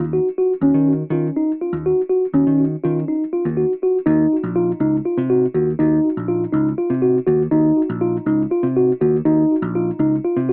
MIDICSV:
0, 0, Header, 1, 3, 480
1, 0, Start_track
1, 0, Tempo, 493421
1, 599, Time_signature, 7, 3, 24, 8
1, 10242, End_track
2, 0, Start_track
2, 0, Title_t, "Tine electric piano"
2, 0, Program_c, 0, 4
2, 128, Note_on_c, 0, 66, 62
2, 269, Note_off_c, 0, 66, 0
2, 371, Note_on_c, 0, 66, 66
2, 511, Note_off_c, 0, 66, 0
2, 609, Note_on_c, 0, 61, 83
2, 893, Note_off_c, 0, 61, 0
2, 1089, Note_on_c, 0, 65, 61
2, 1229, Note_off_c, 0, 65, 0
2, 1328, Note_on_c, 0, 63, 69
2, 1468, Note_off_c, 0, 63, 0
2, 1571, Note_on_c, 0, 65, 61
2, 1711, Note_off_c, 0, 65, 0
2, 1810, Note_on_c, 0, 66, 68
2, 1950, Note_off_c, 0, 66, 0
2, 2039, Note_on_c, 0, 66, 60
2, 2182, Note_off_c, 0, 66, 0
2, 2277, Note_on_c, 0, 61, 82
2, 2564, Note_off_c, 0, 61, 0
2, 2758, Note_on_c, 0, 65, 69
2, 2902, Note_off_c, 0, 65, 0
2, 2998, Note_on_c, 0, 63, 60
2, 3142, Note_off_c, 0, 63, 0
2, 3239, Note_on_c, 0, 65, 66
2, 3383, Note_off_c, 0, 65, 0
2, 3475, Note_on_c, 0, 66, 59
2, 3619, Note_off_c, 0, 66, 0
2, 3726, Note_on_c, 0, 66, 62
2, 3867, Note_off_c, 0, 66, 0
2, 3948, Note_on_c, 0, 63, 79
2, 4238, Note_off_c, 0, 63, 0
2, 4434, Note_on_c, 0, 65, 75
2, 4579, Note_off_c, 0, 65, 0
2, 4677, Note_on_c, 0, 63, 68
2, 4821, Note_off_c, 0, 63, 0
2, 4917, Note_on_c, 0, 65, 60
2, 5061, Note_off_c, 0, 65, 0
2, 5154, Note_on_c, 0, 66, 67
2, 5299, Note_off_c, 0, 66, 0
2, 5394, Note_on_c, 0, 66, 59
2, 5539, Note_off_c, 0, 66, 0
2, 5632, Note_on_c, 0, 63, 77
2, 5921, Note_off_c, 0, 63, 0
2, 6112, Note_on_c, 0, 65, 68
2, 6257, Note_off_c, 0, 65, 0
2, 6348, Note_on_c, 0, 63, 66
2, 6495, Note_off_c, 0, 63, 0
2, 6597, Note_on_c, 0, 65, 71
2, 6742, Note_off_c, 0, 65, 0
2, 6829, Note_on_c, 0, 66, 67
2, 6975, Note_off_c, 0, 66, 0
2, 7067, Note_on_c, 0, 66, 68
2, 7215, Note_off_c, 0, 66, 0
2, 7309, Note_on_c, 0, 63, 88
2, 7599, Note_off_c, 0, 63, 0
2, 7793, Note_on_c, 0, 65, 75
2, 7938, Note_off_c, 0, 65, 0
2, 8043, Note_on_c, 0, 63, 66
2, 8185, Note_off_c, 0, 63, 0
2, 8282, Note_on_c, 0, 65, 67
2, 8425, Note_off_c, 0, 65, 0
2, 8527, Note_on_c, 0, 66, 66
2, 8669, Note_off_c, 0, 66, 0
2, 8766, Note_on_c, 0, 66, 65
2, 8908, Note_off_c, 0, 66, 0
2, 9003, Note_on_c, 0, 63, 82
2, 9289, Note_off_c, 0, 63, 0
2, 9488, Note_on_c, 0, 65, 70
2, 9630, Note_off_c, 0, 65, 0
2, 9727, Note_on_c, 0, 63, 72
2, 9868, Note_off_c, 0, 63, 0
2, 9966, Note_on_c, 0, 65, 68
2, 10108, Note_off_c, 0, 65, 0
2, 10205, Note_on_c, 0, 66, 60
2, 10242, Note_off_c, 0, 66, 0
2, 10242, End_track
3, 0, Start_track
3, 0, Title_t, "Picked electric bass"
3, 0, Program_c, 1, 34
3, 0, Note_on_c, 1, 39, 74
3, 180, Note_off_c, 1, 39, 0
3, 597, Note_on_c, 1, 39, 78
3, 689, Note_off_c, 1, 39, 0
3, 723, Note_on_c, 1, 51, 64
3, 993, Note_off_c, 1, 51, 0
3, 1073, Note_on_c, 1, 51, 81
3, 1256, Note_off_c, 1, 51, 0
3, 1681, Note_on_c, 1, 39, 82
3, 1861, Note_off_c, 1, 39, 0
3, 2273, Note_on_c, 1, 39, 77
3, 2366, Note_off_c, 1, 39, 0
3, 2401, Note_on_c, 1, 51, 68
3, 2672, Note_off_c, 1, 51, 0
3, 2769, Note_on_c, 1, 51, 77
3, 2946, Note_off_c, 1, 51, 0
3, 3359, Note_on_c, 1, 39, 71
3, 3540, Note_off_c, 1, 39, 0
3, 3954, Note_on_c, 1, 39, 87
3, 4137, Note_off_c, 1, 39, 0
3, 4315, Note_on_c, 1, 34, 85
3, 4588, Note_off_c, 1, 34, 0
3, 4671, Note_on_c, 1, 37, 81
3, 4855, Note_off_c, 1, 37, 0
3, 5035, Note_on_c, 1, 48, 79
3, 5308, Note_off_c, 1, 48, 0
3, 5394, Note_on_c, 1, 39, 86
3, 5577, Note_off_c, 1, 39, 0
3, 5640, Note_on_c, 1, 39, 78
3, 5821, Note_off_c, 1, 39, 0
3, 6003, Note_on_c, 1, 34, 84
3, 6273, Note_off_c, 1, 34, 0
3, 6357, Note_on_c, 1, 37, 82
3, 6539, Note_off_c, 1, 37, 0
3, 6712, Note_on_c, 1, 48, 69
3, 6986, Note_off_c, 1, 48, 0
3, 7076, Note_on_c, 1, 39, 86
3, 7259, Note_off_c, 1, 39, 0
3, 7310, Note_on_c, 1, 39, 76
3, 7495, Note_off_c, 1, 39, 0
3, 7681, Note_on_c, 1, 34, 91
3, 7952, Note_off_c, 1, 34, 0
3, 8038, Note_on_c, 1, 37, 86
3, 8220, Note_off_c, 1, 37, 0
3, 8397, Note_on_c, 1, 48, 69
3, 8669, Note_off_c, 1, 48, 0
3, 8768, Note_on_c, 1, 39, 88
3, 8946, Note_off_c, 1, 39, 0
3, 9002, Note_on_c, 1, 39, 84
3, 9182, Note_off_c, 1, 39, 0
3, 9360, Note_on_c, 1, 34, 91
3, 9632, Note_off_c, 1, 34, 0
3, 9721, Note_on_c, 1, 37, 82
3, 9902, Note_off_c, 1, 37, 0
3, 10084, Note_on_c, 1, 48, 75
3, 10242, Note_off_c, 1, 48, 0
3, 10242, End_track
0, 0, End_of_file